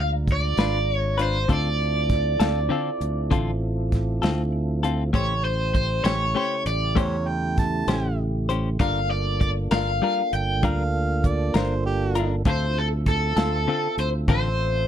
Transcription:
Already playing: D2 G#3 D4 F4 A#5
0.00 F5
0.28 kick, closed hi-hat
0.32 D5
0.57 G#1 D4 F4 B4, snare, closed hi-hat
0.94 C#5
1.18 D4 F4 B4, closed hi-hat
1.22 C5
1.48 D2 D3 C4 E4 F4 A4, kick, closed hi-hat
1.53 D5
2.10 kick, snare, closed hi-hat
2.40 D2 C4 F4 A4, snare, closed hi-hat
2.69 D3 C4 F4 A4
3.01 D2, closed hi-hat
3.31 A1 D3 C4 F4 A4, kick, closed hi-hat
3.92 kick, snare, closed hi-hat
4.22 D2 C4 F4 A4, snare, closed hi-hat
4.83 C4 F4 A4, closed hi-hat
5.13 A1 C#3 A3 C#4 E4 G4 C5 C#5, kick, closed hi-hat
5.45 C5
5.75 C5, kick, closed hi-hat
6.04 A1 C#4 G4 C5 C#5, snare, closed hi-hat
6.35 A3 C#4 G4 C5
6.66 A1 D5, closed hi-hat
6.95 E2 A3 C#4 G4 C5 C#5, kick, closed hi-hat
7.28 G5
7.58 A5, kick, snare, closed hi-hat
7.88 A1 C#4 G4 C5, snare, closed hi-hat
8.49 C#4 G4 C5, closed hi-hat
8.80 G3 A#3 D4 F4 A4 A#4 F5, kick, closed hi-hat
9.11 D5
9.41 D5, kick, closed hi-hat
9.71 G1 D4 F4 A#4 F5, snare, closed hi-hat
10.02 G3 D4 F4 A#4
10.33 G1 G5, closed hi-hat
10.63 D2 G3 D4 F4 A#4 F5, kick, closed hi-hat
11.24 D5, kick, closed hi-hat
11.54 G1 D4 F4 A#4 C5, snare, closed hi-hat
11.86 G4
12.15 D4 F4 A#4, closed hi-hat
12.45 D2 D3 C4 F4 A4 E5, kick, closed hi-hat
12.50 C5
12.79 A4
13.06 A4, kick, snare, closed hi-hat
13.37 D2 C4 F4 A4, snare, closed hi-hat
13.67 D3 C4 F4 A4
13.98 D2 C5, closed hi-hat
14.28 A1 D3 C4 F4 A4 C5, kick, closed hi-hat

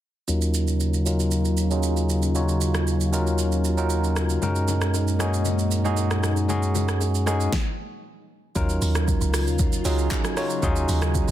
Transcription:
0.28 D#2 C#3 F#3 C#4 D#4 F4 A#4, shaker
0.42 shaker
0.54 shaker
0.68 shaker
0.80 shaker
0.94 shaker
1.05 F#3 C#4 D#4 F4 A#4, shaker
1.20 shaker
1.31 shaker
1.45 shaker
1.57 shaker
1.71 F#3 C#4 D#4 F4 G#4, shaker
1.83 shaker
1.97 shaker
2.09 shaker
2.23 shaker
2.35 F#3 C#4 D#4 F4 C#5, shaker
2.49 shaker
2.61 shaker
2.75 cross-stick, shaker
2.87 shaker
3.01 shaker
3.12 F#3 C#4 D#4 F4 A#4, shaker
3.27 shaker
3.38 shaker
3.52 shaker
3.65 shaker
3.77 F#3 C#4 D#4 F4 A#4, shaker
3.90 shaker
4.04 shaker
4.16 cross-stick, shaker
4.30 shaker
4.42 F#2 A#2 G#3 C#4 D#4 F#4 A#4, low conga, shaker
4.55 shaker
4.68 low bongo, low conga, shaker
4.81 cross-stick, shaker
4.94 high bongo, shaker
5.08 shaker
5.19 G#3 C#4 D#4 F#4 G#4, cross-stick, high bongo, low bongo, shaker
5.34 shaker
5.45 low conga, shaker
5.59 shaker
5.71 shaker
5.84 G#3 C#4 D#4 F#4 G#4, low bongo, shaker
5.97 high bongo, shaker
6.11 cross-stick, shaker
6.23 cross-stick, shaker
6.36 high bongo, shaker
6.49 G#3 C#4 D#4 F#4 G#4, low conga, shaker
6.63 shaker
6.75 low bongo, low conga, shaker
6.89 cross-stick, shaker
7.01 high bongo, shaker
7.15 shaker
7.26 G#3 C#4 D#4 F#4 G#4, cross-stick, high bongo, low bongo, shaker
7.41 shaker
7.53 kick, snare
8.55 D#2 C#3 F#3 C#4 D#4 F4 A#4, kick, shaker
8.69 shaker
8.82 D#2, open hi-hat, shaker
8.95 cross-stick, shaker
9.08 kick, shaker
9.21 C#2, shaker
9.34 cross-stick, open hi-hat, shaker
9.47 D#2, shaker
9.59 kick, shaker
9.73 shaker
9.85 C#2 F#3 C#4 D#4 F4 G#4, open hi-hat, shaker
9.98 shaker
10.11 kick, clap, shaker
10.25 cross-stick, shaker
10.36 F#3 C#4 D#4 F4 C#5, cross-stick, open hi-hat, shaker
10.50 shaker
10.62 D#2 F#3 C#4 D#4 F4 G#4, kick, shaker
10.76 shaker
10.89 D#2, open hi-hat, shaker
11.02 cross-stick, shaker
11.15 kick, shaker
11.28 C#2

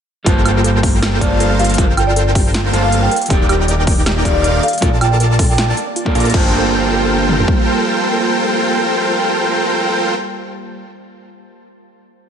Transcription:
0.24 G1 G3 A#3 F4 A4 A#4 C5 G5 A5, kick, closed hi-hat
0.45 F4, closed hi-hat, high woodblock
0.64 A4, closed hi-hat
0.83 G4, kick, open hi-hat
1.02 F4, snare, closed hi-hat, high woodblock
1.19 G3 A#3 F4 A4 A#4 C5 D5 F5 A5, kick, closed hi-hat
1.23 C5
1.31 D5
1.40 A4, closed hi-hat
1.59 G4 F5, closed hi-hat
1.64 closed hi-hat
1.70 closed hi-hat
1.74 G3 F4, closed hi-hat
1.78 F4 A4 A#4 C5 G5, kick, closed hi-hat
1.97 F4 G5, closed hi-hat, high woodblock
2.07 D5
2.16 A4, closed hi-hat
2.35 G4, kick, open hi-hat
2.54 F4, snare, closed hi-hat
2.72 G1 G3 A#3 F4 A4 A#4 C5 F5 A5, closed hi-hat
2.83 F5
2.92 A4, closed hi-hat
3.02 G5
3.11 D#3 G4 A#4 D5 G5, closed hi-hat
3.16 closed hi-hat
3.22 closed hi-hat
3.26 D#3 D#4, closed hi-hat
3.30 D#1 D#4 G4 A#4 D5 G5, kick, closed hi-hat
3.49 G4, closed hi-hat, high woodblock
3.68 D5, closed hi-hat
3.87 A#4, kick, open hi-hat
4.06 G4, snare, closed hi-hat, high woodblock
4.24 D#1 D#3 D#4 G4 A#4 D5 F5, kick, closed hi-hat
4.35 D5
4.44 D5, closed hi-hat
4.63 A4 F5, closed hi-hat
4.68 closed hi-hat
4.73 closed hi-hat
4.78 A#3, closed hi-hat
4.82 A#1 F4 A4 A#4 D5 A5, kick, closed hi-hat
5.01 F4 G5, closed hi-hat, high woodblock
5.20 A#4, closed hi-hat
5.39 A4, kick, open hi-hat
5.49 G5
5.58 F4 G5, snare, closed hi-hat
5.77 A5, closed hi-hat
5.87 D5
5.96 F4, closed hi-hat
6.05 A#3 F4 A4 D5, kick
6.15 A#1 F4 A4 A#4 D5 F5 A#5, closed hi-hat
6.20 closed hi-hat
6.25 A#4, closed hi-hat
6.30 G3 F4, closed hi-hat
6.34 G1 G3 A#3 F4 A4 A#4 C5 G5 A5, kick, crash
7.29 mid tom
7.39 floor tom
7.48 kick

